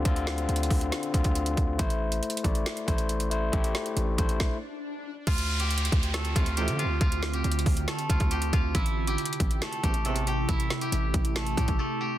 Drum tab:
CC |------------------------------------------------|------------------------------------------------|------------------------------------------------|x-----------------------------------------------|
HH |x--x-----x--x-x-x-o--x--x--x--x--x--x--x--x-----|x--x-----x--x-x-x-x--x--x--x--x--x--x--x--x-----|x--x-----x--x-----x--x--------------------------|x--x-----x--x-x-x-x--x--x--x--x--x--x--x--x-----|
SD |------o-----------------o-----------------------|------------------------o-----------------------|------o-----------------o-----------------------|------------------------o-----------------------|
BD |o-----------------o-----------o--o--------o-----|o-----------------o-----------o-----------------|o-----------------o-----o-----------------------|o-----------------o-----------o-----------------|

CC |------------------------------------------------|------------------------------------------------|------------------------------------------------|
HH |x--x-----x--x-x-x-o--x--x--x--x--x--x--x--x-----|x--x-----x--x-x-x-x--x--x--x--x--x--x--x--x-----|x--x-----x--x-----x--x--x--x--x--x--------------|
SD |------o-----------------o-----------------------|------------------------o-----------------------|------o-----------------o-----------------------|
BD |o-----------------o-----------o--o--------o-----|o-----------------o-----------o-----------------|o-----------------o-----------o--o--------------|